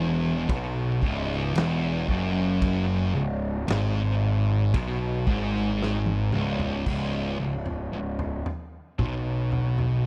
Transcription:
Already playing: E1 E2
0.49 B1 B2, kick, ride bell
1.02 C#1 C#2, kick
1.32 snare
1.54 E1 E2, snare, ride bell
2.08 F#1 F#2, kick
2.62 kick, ride bell
3.14 C#1 C#2
3.68 G#1 G#2, snare, ride bell
4.74 B1 B2, kick, ride bell
5.27 G#1 G#2, kick
5.56 snare
5.82 snare
6.06 high tom
6.33 C#1 C#2, mid tom
6.59 floor tom
6.86 C#1 C#2, kick, floor tom, crash
7.40 C#1 C#2
7.66 floor tom
7.93 C#1 C#2
8.19 floor tom
8.46 floor tom
8.99 B1 B2, kick, floor tom
9.52 floor tom
9.78 floor tom

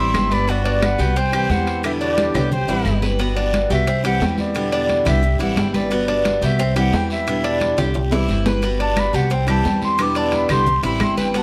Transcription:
Already playing: A1 C4 E4 E5 C6
0.00 E3 G3
0.14 G1 E3 G3 C4 E4, high conga, high timbale, low timbale, short guiro, claves
0.31 B4 D5 B5, high conga, short guiro
0.47 G3 B3 F#4 D5, high timbale, long guiro
0.65 D4, high conga, high timbale
0.82 B4 F#5, high conga, high timbale, short guiro, claves
0.98 C2 B3 F#4 G4, short guiro
1.16 C4 C5 G5, muted steel-string acoustic guitar stroke, high conga, high timbale, long guiro
1.32 E3 G3 C4 E4 G4, high conga, high timbale, claves
1.49 E2 E3 G3 C4 E4 C5 F#5, high conga, low timbale, short guiro
1.67 high timbale, short guiro
1.83 B2 D3 G3 B3 E4 G4 E5, high conga, high timbale, long guiro, claves
2.01 D4 G4 D5, high conga
2.18 high conga, high timbale, short guiro
2.34 C2 D3 G3 B3 E4 G4, high conga, low conga, high timbale, short guiro, claves
2.51 C5 G5, muted steel-string acoustic guitar stroke, high conga, low conga, long guiro
2.68 A1 E3 G3 C4 E4, high conga, high timbale
2.85 G1 E3 G3 C4 E4, high conga, short guiro, claves
3.02 B4, high conga, low timbale, short guiro
3.19 G3 B3 F#4, high conga, high timbale, long guiro
3.37 D4, high conga, high timbale
3.53 high conga, high timbale, low timbale, short guiro
3.70 C2 B3 F#4 G4 E5, high conga, short guiro
3.87 C4, muted steel-string acoustic guitar stroke, high conga, high timbale, long guiro
4.04 E3 G3 C4 E4 G4 F#5, high conga, high timbale
4.20 E2 E3 C4 E4, high conga, low timbale, short guiro
4.24 G5
4.38 D5, high conga, short guiro
4.55 B2 D3 G3 B3 E4, high conga, high timbale, long guiro
4.72 D4, high conga, high timbale
4.89 high conga, high timbale, low timbale, short guiro
5.05 C2 D3 G3 B3 E4 G4 E5, high conga, low conga, high timbale, short guiro
5.23 muted steel-string acoustic guitar stroke, high conga, long guiro
5.39 A1 E3 G3 C4 E4 F#5, high conga, high timbale
5.56 G1 E3 G3 C4 E4 G5, high conga, high timbale, low timbale, short guiro
5.74 B4 D5, high conga, short guiro
5.90 G3 B3 F#4, high conga, high timbale, long guiro
6.08 D4, high conga, high timbale
6.25 high conga, high timbale, low timbale, short guiro
6.41 C2 B3 F#4 G4 E5, high conga, short guiro
6.59 C4, muted steel-string acoustic guitar stroke, high conga, high timbale, long guiro
6.76 E3 G3 C4 E4 G4 F#5, high conga, high timbale
6.92 E2 E3 G3 C4 E4 G5, high conga, low timbale, short guiro
7.10 E5, short guiro
7.27 B2 D3 G3 B3 E4, high conga, high timbale, long guiro
7.44 D4, high conga, high timbale
7.61 high conga, high timbale, low timbale, short guiro
7.77 C2 D3 G3 B3 E4 G4, high conga, low conga, high timbale, short guiro
7.94 muted steel-string acoustic guitar stroke, high conga, low conga, high timbale, long guiro
8.11 E3 G3 C4 E4, high conga, low timbale
8.28 G1 E3 G3 C4 E4, high conga, short guiro
8.46 B4, high conga, low timbale, short guiro
8.62 G3 B3 F#4, high conga, high timbale, long guiro
8.80 D4 A5, high conga, high timbale
8.97 B5, high conga, high timbale, low timbale, short guiro, claves
9.13 C2 B3 F#4 G4 F#5, high conga, short guiro
9.30 C4, muted steel-string acoustic guitar stroke, high conga, high timbale, long guiro
9.34 G5
9.47 E3 G3 C4 E4 G4 A5, high conga, high timbale, claves
9.64 E2 E3 G3 C4 E4, high conga, low timbale, short guiro
9.82 C6, high conga, short guiro
9.98 B2 D3 G3 B3 E4 D6, high conga, high timbale, long guiro, claves
10.15 D4 A5, high conga, high timbale
10.32 B5, high conga, high timbale, low timbale, short guiro
10.49 C2 D3 G3 B3 E4 G4 C6, high conga, low conga, high timbale, short guiro, claves
10.66 muted steel-string acoustic guitar stroke, high conga, low conga, long guiro
10.83 A1 E3 G3 C4 E4 B5, high conga, high timbale
11.00 G1 E3 G3 C4 E4 C6, high conga, high timbale, low timbale, short guiro, claves
11.17 B4 G5, high conga, short guiro
11.34 G3 B3 F#4 A5, high conga, high timbale, long guiro

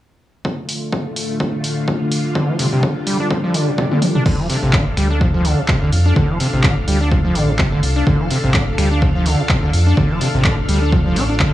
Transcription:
0.45 D3 A3 D4 F4, kick
0.55 A4
0.69 open hi-hat
0.92 kick
1.16 open hi-hat
1.40 F4, kick
1.47 A5
1.64 open hi-hat
1.88 kick
2.12 open hi-hat
2.35 D3 G3, kick
2.49 F3
2.59 C3, open hi-hat
2.72 C3
2.83 D3, kick
3.07 G3, open hi-hat
3.20 D4
3.31 F3, kick, swell
3.44 F3
3.54 D3, open hi-hat
3.68 C3
3.78 C3, kick
3.91 D3, high tom
4.02 open hi-hat, mid tom
4.15 D4, mid tom
4.26 D2 D3 D4 A4 F5, kick, crash
4.39 F3
4.50 C3, open hi-hat
4.63 A1 C3
4.73 D3, kick, clap
4.97 D2 G3, finger snap, open hi-hat
5.10 D4
5.21 F3, kick
5.34 F3
5.45 D3, open hi-hat
5.58 C3
5.68 C3, kick, clap
5.82 D2 D3
5.92 F2, open hi-hat
6.06 D4
6.16 D2 D3, kick
6.29 F3
6.40 C3, open hi-hat
6.53 A1 C3
6.63 D3, kick, clap
6.88 D2 G3, open hi-hat
7.01 D4
7.11 F3, kick
7.25 F3
7.35 A1 D3, open hi-hat
7.48 C3
7.59 C3, kick, clap
7.72 D3
7.83 C2, open hi-hat
7.96 D4
8.07 D2 D3, kick
8.20 F3
8.31 C3, open hi-hat
8.44 A1 C3
8.54 D3, kick, clap
8.78 D2 G3, finger snap, open hi-hat
8.91 D4
9.02 F3, kick
9.15 F3
9.26 D3, open hi-hat
9.39 C3
9.49 C3, kick, clap
9.63 D2 D3
9.73 F2, open hi-hat
9.87 D4
9.97 D2 D3, kick
10.10 F3
10.21 C3, open hi-hat
10.34 A1 C3
10.44 D3, kick, clap
10.69 D2 G3, open hi-hat
10.82 D4
10.92 F3, kick
11.06 F3
11.16 A1 D4, open hi-hat
11.30 D4
11.40 D3, kick, clap

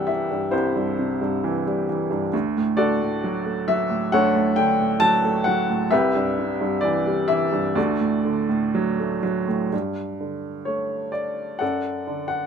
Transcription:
Already playing: C2 G2 C3 E3 G3 G4 B4 E5 F#5 G5 A5
0.07 E3 E5
0.31 G2
0.51 C2 E4 G4 C5
0.75 G2
0.99 C3
1.21 G2
1.44 E3
1.67 G3
1.89 E3
2.11 G2
2.33 D2
2.57 A2
2.77 D3 F#4 A4 D5
3.02 A2
3.24 F#3
3.46 A3
3.68 F#3 E5
3.90 A2
4.12 D2 A4 C#5 F#5
4.35 A2
4.56 D3 G5
4.80 A2
5.00 F#3 A5
5.25 A3
5.44 F#3 F#5
5.70 A2
5.91 C2 G4 B4 E5
6.15 G2
6.39 C3
6.61 G2
6.81 E3 D5
7.07 G3
7.28 E3 E5
7.52 G2
7.75 D2 F#4 A4 D5
8.01 A2
8.25 D3
8.49 A2
8.75 F#3
9.00 A3
9.23 F#3
9.48 A2
9.73 G2
10.20 D3
10.65 A3 C#5
11.12 D5
11.59 F#2 A4 D5 F#5
12.07 D3
12.28 F#5

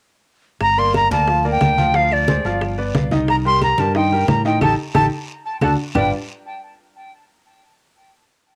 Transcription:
0.61 G1 A#5, high bongo, high conga, long guiro, claves
0.77 A#3 A#4 D5 C6, high conga
0.94 A#5, high bongo, high conga, short guiro, claves
1.11 D2 A#3 A#4 D5 A5, high conga, short guiro
1.28 F3 F4 F5, high bongo, high conga, long guiro
1.45 A#3 A#4 D5, high conga
1.51 G5
1.61 D2, high bongo, low bongo, high conga, short guiro, claves
1.78 F3 F4 F5, high conga, short guiro
1.94 F3 F4 F5, high bongo, high conga, long guiro
2.11 D5, high bongo, high conga, claves
2.28 G#3 G#4 C5, high bongo, high conga, short guiro
2.45 G1 F3 F4 F5, high bongo, high conga, short guiro
2.61 high bongo, high conga, long guiro, claves
2.78 B3 B4 D5, high bongo, high conga
2.95 C2, high bongo, low bongo, high conga, short guiro
3.11 D#3 D#4 D#5, high conga, short guiro
3.28 A#5, high bongo, high conga, long guiro, claves
3.45 G3 G4 A#4 C6, high conga
3.61 A#5, high bongo, high conga, short guiro, claves
3.78 G2 G3 G4 A#4 A5, high conga, short guiro
3.95 D#3 D#4 D#5 G5, high bongo, high conga, long guiro
4.11 G3 G4 A#4, high conga
4.28 A2 A#5, high bongo, low bongo, high conga, short guiro, claves
4.45 D#3 D#4 D#5 G5, short guiro
4.61 A1 D#4 G4 A4 A5, high bongo, high conga, long guiro, claves
4.94 A1 D#4 G4 A4 A5, high bongo, high conga, long guiro, claves
5.61 D2 D4 F#4 A4 A5, high bongo, high conga, long guiro, claves
5.95 G1 G3 D4 F4 G4 B4 D5 G5, low bongo, low conga, long guiro, claves

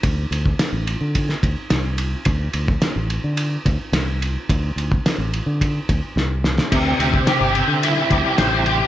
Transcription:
0.03 D2, kick, ride
0.31 D2, ride
0.46 kick
0.59 snare, ride
0.73 A1
0.87 ride
1.01 D3
1.15 kick, ride
1.29 snare
1.43 D2, kick, ride
1.70 C2, snare, ride
1.98 ride
2.25 D2, kick, ride
2.53 D2, ride
2.68 kick
2.82 snare, ride
2.96 A1
3.10 ride
3.24 D3
3.37 ride
3.65 D2, kick, ride
3.92 C2, snare, ride
4.22 ride
4.49 D2, kick, ride
4.76 D2, ride
4.92 kick
5.06 snare, ride
5.18 A1
5.34 ride
5.46 D3
5.61 kick, ride
5.89 D2, kick, ride
6.16 C2, snare
6.44 snare
6.58 snare
6.72 D2 C3, kick, crash, ride
6.99 D2 C4, ride
7.14 kick
7.27 G4, snare, ride
7.41 G1
7.55 C4, ride
7.68 D3
7.83 E4, ride
8.10 D2 G4, kick, ride
8.38 A1 C5, snare, ride
8.66 G4, ride

